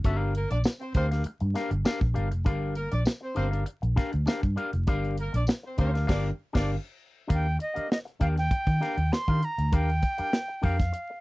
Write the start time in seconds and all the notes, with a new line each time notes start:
0.04 G1 C#4 F#4 A4 E5, kick, closed hi-hat
0.16 D4 G4 A#4 F5
0.34 A#3 A#4, closed hi-hat
0.50 A#1 D4 D5, muted clean electric guitar stroke, closed hi-hat
0.64 muted clean electric guitar stroke, snare, tambourine
0.79 C4 C5, muted clean electric guitar stroke, closed hi-hat
0.94 D2 C4 D4 G4 A#4 C5 F5, kick, closed hi-hat
1.11 D4 G4 A#4 F5, snare, closed hi-hat
1.24 muted clean electric guitar stroke, closed hi-hat
1.40 G2, muted clean electric guitar stroke, closed hi-hat
1.54 D4 G4 A#4 F5, snare, closed hi-hat
1.71 G1, muted clean electric guitar stroke, closed hi-hat
1.85 D4 G4 A#4 F5, snare, tambourine
2.01 A#1, muted clean electric guitar stroke, kick
2.14 G1 D4 G4 A#4 F5, closed hi-hat
2.31 F1, closed hi-hat
2.45 G1 D4 G4 A#4 F5, kick, closed hi-hat
2.75 A#3 A#4, closed hi-hat
2.92 A#1 D4 D5, muted clean electric guitar stroke, closed hi-hat
3.05 muted clean electric guitar stroke, snare, tambourine
3.21 C4 C5, muted clean electric guitar stroke
3.35 G1 C4 D4 G4 A#4 C5 F5, closed hi-hat
3.51 D4 G4 A#4 F5, closed hi-hat
3.65 muted clean electric guitar stroke, closed hi-hat
3.82 A#1, muted clean electric guitar stroke, closed hi-hat
3.96 D4 G4 A#4 F5, kick, snare, closed hi-hat
4.12 D2, muted clean electric guitar stroke, closed hi-hat
4.26 D4 G4 A#4 F5, snare, tambourine
4.42 G2, muted clean electric guitar stroke, kick, closed hi-hat
4.56 D4 G4 A#4 F5, closed hi-hat
4.73 F1, closed hi-hat
4.87 G1 D4 G4 A#4 F5, kick, closed hi-hat
5.05 closed hi-hat
5.18 A#3 A#4, closed hi-hat
5.33 A#1 D4 D5, muted clean electric guitar stroke, closed hi-hat
5.47 muted clean electric guitar stroke, snare, tambourine
5.63 C4 C5, muted clean electric guitar stroke
5.78 D2 C4 D4 G4 A#4 C5 F5, kick, closed hi-hat
5.94 D4 G4 A#4 F5, snare, closed hi-hat
6.07 G1 D4 G4 A#4 D5 F5, kick, snare, crash
6.53 G1 D4 G4 A#4 D5 F5, kick, snare, crash
7.28 D#2 D4 G4 A#4 F5, kick, closed hi-hat
7.34 G5
7.59 D#5, muted clean electric guitar stroke, closed hi-hat
7.74 D4 G4 A#4 F5, muted fingered electric bass stroke, closed hi-hat
7.89 D#5, muted clean electric guitar stroke, snare
8.05 muted clean electric guitar stroke, closed hi-hat
8.20 D#2 D4 G4 A#4 F5 G5, kick, closed hi-hat
8.36 G5, muted clean electric guitar stroke, snare, closed hi-hat
8.51 muted clean electric guitar stroke, muted fingered electric bass stroke, kick, closed hi-hat
8.67 D#3, muted clean electric guitar stroke, kick, closed hi-hat
8.80 D4 G4 A#4 F5, snare, closed hi-hat
8.97 D#2, muted clean electric guitar stroke, closed hi-hat
9.12 C6, muted clean electric guitar stroke, snare
9.28 D#3 D4 G4 A#4 F5, kick
9.42 A#5, muted clean electric guitar stroke, closed hi-hat
9.58 D2, muted clean electric guitar stroke, closed hi-hat
9.72 D#2 D4 G4 A#4 F5 G5, kick, closed hi-hat
9.90 closed hi-hat
10.02 muted clean electric guitar stroke, kick, closed hi-hat
10.18 D4 G4 A#4 F5, muted fingered electric bass stroke, closed hi-hat
10.32 muted clean electric guitar stroke, snare
10.48 muted clean electric guitar stroke
10.62 F2 D4 G4 A#4 F5 G5, kick, open hi-hat
10.78 muted clean electric guitar stroke, kick, snare, closed hi-hat
10.92 muted clean electric guitar stroke, closed hi-hat
11.10 muted clean electric guitar stroke